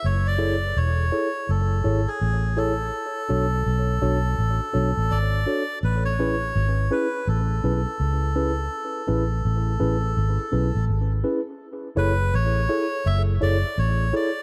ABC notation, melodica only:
X:1
M:4/4
L:1/16
Q:"Swing 16ths" 1/4=83
K:F#m
V:1 name="Melodica"
c d3 c4 A3 G3 A2- | A12 d4 | B c4- c B2 A8- | A12 z4 |
z2 B2 c4 e2 d2 c2 d2 |]